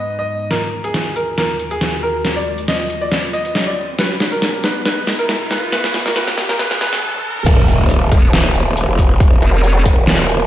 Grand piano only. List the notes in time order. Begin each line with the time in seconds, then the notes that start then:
Already playing: D#5
0.19 D#5
0.51 A#4
0.84 G#4
1.16 A#4
1.38 A#4
1.71 G#4
2.03 A#4
2.36 D5
2.68 D#5
3.01 D5
3.33 D#5
3.67 D5
3.99 B4
4.32 A#4
4.64 B4
4.86 B4
5.19 A#4
5.51 B4
5.72 B4
6.06 A#4
6.16 B4
6.49 A#4
6.59 B4
6.81 B4